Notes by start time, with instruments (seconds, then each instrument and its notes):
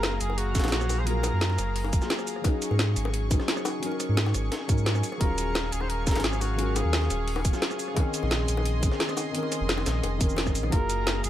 Already playing: sub bass F#1, felt piano F#3 A#3 F4 G#4, analog synth pad G#4 F5 A#5, flugelhorn A#4
0.03 snare, closed hi-hat, high bongo
0.20 sub bass F#1, flugelhorn G#4, closed hi-hat, shaker
0.30 high bongo
0.38 flugelhorn F#4, closed hi-hat
0.52 felt piano F#3 A#3, kick, snare, closed hi-hat, shaker
0.56 felt piano G#4 F5, snare, closed hi-hat
0.64 sub bass A#1, cross-stick, snare, closed hi-hat, high bongo
0.68 snare, closed hi-hat
0.72 snare, closed hi-hat
0.81 cross-stick, shaker
0.89 closed hi-hat, open hi-hat, high bongo, shaker
1.00 felt piano F#3, flugelhorn C5
1.06 felt piano A#3 F4, flugelhorn A#4, closed hi-hat
1.10 felt piano A#4
1.23 cross-stick, closed hi-hat, high bongo, shaker
1.33 sub bass F#2
1.41 snare, closed hi-hat
1.50 snare, high bongo
1.58 sub bass F#1, cross-stick, closed hi-hat, shaker
1.76 closed hi-hat, open hi-hat
1.84 high bongo
1.93 kick, closed hi-hat, shaker
1.98 felt piano F#3 A#3, snare, shaker
2.03 felt piano F4 G#4
2.10 snare, closed hi-hat, high bongo
2.19 cross-stick, shaker
2.27 closed hi-hat, open hi-hat, shaker
2.36 cross-stick
2.41 felt piano F#3 C#4, analog synth pad G#4 C#6, kick, closed hi-hat, high bongo
2.46 felt piano D#4 G#4
2.62 closed hi-hat, shaker
2.70 sub bass G#2, high bongo
2.79 snare, closed hi-hat
2.96 sub bass G#1, closed hi-hat, shaker
3.05 high bongo
3.14 closed hi-hat
3.28 felt piano F#3 C#4, kick, closed hi-hat, high bongo, shaker
3.32 felt piano D#4 G#4
3.39 cross-stick, snare
3.48 snare, closed hi-hat
3.57 cross-stick, shaker
3.65 closed hi-hat, open hi-hat, high bongo, shaker
3.79 felt piano F#3 C#4, closed hi-hat
3.84 felt piano D#4 A#4
3.92 high bongo
4.00 cross-stick, closed hi-hat, shaker
4.09 sub bass G#2
4.17 snare, closed hi-hat
4.26 snare, high bongo
4.34 sub bass G#1, cross-stick, closed hi-hat, shaker
4.52 snare, closed hi-hat, high bongo
4.67 sub bass G#2, felt piano F#3 C#4 D#4 A#4, kick, closed hi-hat, shaker
4.78 shaker
4.86 snare, closed hi-hat, high bongo
4.95 cross-stick, shaker
5.03 analog synth pad F5, closed hi-hat, open hi-hat, shaker
5.12 cross-stick, high bongo
5.17 sub bass D#1, felt piano F#3 C#4, flugelhorn A#4, kick, closed hi-hat, high bongo
5.22 felt piano F4 G#4
5.38 closed hi-hat, shaker
5.55 snare, closed hi-hat, high bongo
5.72 sub bass D#1, flugelhorn G#4, closed hi-hat, shaker
5.80 flugelhorn C5, high bongo
5.90 flugelhorn A#4, closed hi-hat
6.04 felt piano F#3 C#4, flugelhorn A#4, kick, snare, closed hi-hat, shaker
6.08 felt piano F4 G#4, snare, closed hi-hat
6.15 sub bass G#1, cross-stick, snare, closed hi-hat, high bongo
6.20 snare, closed hi-hat
6.24 flugelhorn G#4, snare, closed hi-hat
6.33 cross-stick, shaker
6.41 flugelhorn F#4, closed hi-hat, open hi-hat, high bongo, shaker
6.55 felt piano F#3 C#4, closed hi-hat
6.60 felt piano F4 A#4
6.76 flugelhorn G#4, cross-stick, closed hi-hat, high bongo, shaker
6.84 sub bass D#2
6.93 snare, closed hi-hat
7.01 snare, high bongo
7.10 sub bass D#1, cross-stick, closed hi-hat, shaker
7.28 closed hi-hat, open hi-hat
7.36 high bongo
7.45 kick, closed hi-hat, shaker
7.50 felt piano F#3 C#4, snare, shaker
7.55 felt piano F4 G#4
7.62 snare, closed hi-hat, high bongo
7.71 cross-stick, shaker
7.79 closed hi-hat, open hi-hat, shaker
7.88 cross-stick
7.93 felt piano D#3 C4, analog synth pad D#5 C6, kick, closed hi-hat, high bongo
7.98 felt piano C#4 G#4
8.14 closed hi-hat, shaker
8.22 sub bass A#1, high bongo
8.31 snare, closed hi-hat
8.48 sub bass A#1, closed hi-hat, shaker
8.57 high bongo
8.65 closed hi-hat
8.79 felt piano D#3 C4, kick, closed hi-hat, high bongo, shaker
8.84 felt piano C#4 G#4
8.91 cross-stick, snare
9.00 snare, closed hi-hat
9.09 cross-stick, shaker
9.17 closed hi-hat, open hi-hat, high bongo, shaker
9.31 felt piano D#3 C4, closed hi-hat
9.35 felt piano C#4 A#4
9.43 high bongo
9.52 cross-stick, closed hi-hat, shaker
9.60 sub bass F1
9.69 snare, closed hi-hat
9.78 snare, high bongo
9.86 sub bass A#1, cross-stick, snare, closed hi-hat, shaker
10.03 sub bass F1, closed hi-hat, high bongo
10.17 sub bass F1, felt piano D#3 C4, kick, closed hi-hat, shaker
10.22 felt piano C#4 A#4
10.29 shaker
10.37 snare, closed hi-hat, high bongo
10.46 kick, cross-stick, shaker
10.55 sub bass A#1, closed hi-hat, open hi-hat, shaker
10.63 cross-stick, high bongo
10.69 sub bass F#1, felt piano F#3 A#3, analog synth pad G#4 F5 A#5, flugelhorn A#4, kick, closed hi-hat, high bongo
10.73 felt piano F4 G#4
10.90 closed hi-hat, shaker
11.07 snare, closed hi-hat, high bongo
11.24 sub bass F#1, flugelhorn G#4, closed hi-hat, shaker